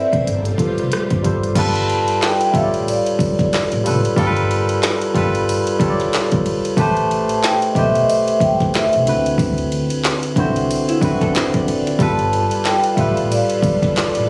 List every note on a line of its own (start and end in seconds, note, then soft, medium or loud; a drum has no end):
0.00 0.21 A3 medium
0.00 0.27 C4 medium
0.00 1.53 C4 medium
0.00 0.24 E4 medium
0.00 0.27 E4 medium
0.00 0.27 A4 medium
0.00 0.30 B4 medium
0.00 0.27 C5 loud
0.00 0.11 D5 medium
0.12 0.24 E1 medium
0.12 0.19 C5 medium
0.12 kick medium
0.12 closed hi-hat soft
0.21 0.27 D5 medium
0.25 0.54 G1 loud
0.25 1.54 G3 medium
0.25 1.54 F4 medium
0.25 1.21 A4 medium
0.25 closed hi-hat medium
0.45 closed hi-hat soft
0.58 1.12 G3 medium
0.58 1.12 F4 medium
0.58 1.13 A4 medium
0.58 0.67 B4 medium
0.58 muted upright bass stroke soft
0.58 kick medium
0.58 closed hi-hat medium
0.68 1.17 C5 medium
0.78 0.90 F1 medium
0.78 cross-stick soft
0.78 closed hi-hat soft
0.92 muted upright bass stroke soft
0.92 cross-stick loud
0.92 closed hi-hat medium
1.10 1.27 G1 medium
1.10 kick loud
1.10 closed hi-hat soft
1.22 1.52 G2 medium
1.22 1.50 G3 medium
1.22 1.50 F4 medium
1.22 1.51 A4 medium
1.22 1.52 C5 medium
1.22 kick medium
1.22 closed hi-hat medium
1.44 cross-stick soft
1.44 closed hi-hat soft
1.55 1.99 G1 loud
1.55 2.35 G3 loud
1.55 2.36 F4 medium
1.55 2.37 A4 medium
1.55 2.37 B4 loud
1.55 2.24 A5 loud
1.55 kick loud
1.55 crash loud
1.55 ride medium
1.75 ride soft
1.90 ride soft
2.08 ride soft
2.22 2.50 G5 loud
2.22 snare loud
2.22 clap medium
2.22 ride medium
2.41 ride soft
2.51 3.58 G3 medium
2.51 3.59 F4 medium
2.51 2.55 E5 medium
2.51 kick medium
2.55 2.81 A1 loud
2.55 3.59 A4 medium
2.55 2.63 C#5 medium
2.55 2.89 F5 medium
2.55 ride medium
2.63 3.63 D5 medium
2.74 ride soft
2.88 3.82 D5 medium
2.88 ride medium
3.06 ride soft
3.19 kick loud
3.19 ride medium
3.39 kick medium
3.39 snare soft
3.39 ride soft
3.53 snare loud
3.53 clap loud
3.53 ride medium
3.72 3.88 A1 loud
3.72 ride soft
3.84 4.12 F#1 loud
3.84 4.11 G3 medium
3.84 4.12 F4 medium
3.84 4.12 A4 medium
3.84 4.13 B4 medium
3.84 ride medium
4.05 ride soft
4.16 4.60 G1 loud
4.16 4.97 G3 loud
4.16 4.97 F4 loud
4.16 4.98 A4 loud
4.16 4.26 A#4 loud
4.16 kick loud
4.16 ride medium
4.27 5.02 B4 loud
4.36 ride soft
4.51 ride soft
4.69 ride soft
4.83 snare loud
4.83 clap medium
4.83 ride medium
5.01 ride soft
5.14 5.42 G1 loud
5.14 5.68 G3 medium
5.14 5.69 F4 medium
5.14 5.69 A4 medium
5.14 kick medium
5.14 ride medium
5.18 5.70 B4 loud
5.35 ride soft
5.49 ride medium
5.67 ride soft
5.79 6.59 G3 medium
5.79 6.60 F4 medium
5.79 6.61 A4 medium
5.79 5.89 C#5 medium
5.79 kick loud
5.79 ride medium
5.90 6.65 D5 medium
6.00 snare soft
6.00 ride soft
6.13 snare loud
6.13 clap loud
6.13 ride medium
6.32 kick loud
6.32 ride soft
6.46 ride medium
6.65 ride soft
6.77 7.21 A1 loud
6.77 7.57 A3 loud
6.77 7.58 G4 medium
6.77 7.59 B4 loud
6.77 7.46 A5 loud
6.77 kick loud
6.77 ride medium
6.81 7.59 C5 loud
6.97 ride soft
7.11 ride soft
7.29 ride soft
7.44 7.69 G5 loud
7.44 snare loud
7.44 clap loud
7.44 ride medium
7.62 ride soft
7.72 8.80 A3 medium
7.72 7.76 D#5 medium
7.72 kick medium
7.76 8.03 B1 medium
7.76 8.81 G4 medium
7.76 8.81 B4 medium
7.76 8.82 C5 medium
7.76 8.04 E5 medium
7.76 ride medium
7.95 ride soft
8.04 8.09 D#5 medium
8.10 8.42 E5 medium
8.10 ride medium
8.28 ride soft
8.40 8.72 G5 medium
8.40 kick loud
8.40 ride medium
8.60 kick medium
8.60 snare soft
8.60 ride soft
8.74 9.22 E5 medium
8.74 snare loud
8.74 clap loud
8.74 ride medium
8.93 9.08 B1 medium
8.93 ride soft
9.05 9.34 D2 loud
9.05 10.11 D3 medium
9.05 10.11 C4 medium
9.05 10.12 E4 medium
9.05 10.12 F#4 medium
9.05 10.13 B4 medium
9.05 ride medium
9.26 ride soft
9.38 9.82 D2 loud
9.38 kick loud
9.38 ride medium
9.58 ride soft
9.72 ride soft
9.90 ride soft
10.05 snare loud
10.05 clap loud
10.05 ride medium
10.23 ride soft
10.36 10.64 C2 medium
10.36 10.90 D3 medium
10.36 10.91 C4 medium
10.36 10.91 E4 medium
10.36 10.92 F#4 medium
10.36 10.92 C5 loud
10.36 kick medium
10.36 ride soft
10.56 ride soft
10.71 ride medium
10.88 11.02 E4 medium
10.88 ride soft
11.01 11.81 D3 medium
11.01 11.82 C4 medium
11.01 11.82 E4 medium
11.01 11.20 F#4 medium
11.01 11.82 F#4 medium
11.01 kick loud
11.01 ride medium
11.05 11.83 B4 medium
11.21 11.34 A4 medium
11.21 kick medium
11.21 snare soft
11.21 ride soft
11.34 11.54 C5 medium
11.34 snare loud
11.34 clap loud
11.34 ride medium
11.54 11.97 D5 medium
11.54 kick medium
11.54 ride soft
11.68 ride medium
11.87 snare soft
11.87 ride soft
11.99 12.43 G1 loud
11.99 12.79 G3 loud
11.99 14.29 G3 medium
11.99 14.29 F4 medium
11.99 12.80 F4 medium
11.99 14.29 A4 medium
11.99 12.80 A4 loud
11.99 14.29 B4 medium
11.99 12.81 B4 loud
11.99 12.68 A5 loud
11.99 kick loud
11.99 ride medium
12.19 ride soft
12.33 ride soft
12.51 ride soft
12.65 12.78 G5 loud
12.65 snare loud
12.65 clap loud
12.65 ride medium
12.84 ride soft
12.94 13.25 A1 loud
12.94 14.02 G3 medium
12.94 14.02 F4 medium
12.94 12.99 E5 medium
12.94 kick medium
12.94 ride medium
12.99 14.03 A4 medium
12.99 14.04 B4 medium
12.99 13.31 F5 medium
13.17 ride soft
13.31 14.24 D5 medium
13.31 ride medium
13.50 ride soft
13.62 kick loud
13.62 ride medium
13.82 kick medium
13.82 snare soft
13.82 ride soft
13.96 snare loud
13.96 clap loud
13.96 ride medium
14.15 14.29 A1 medium
14.15 ride soft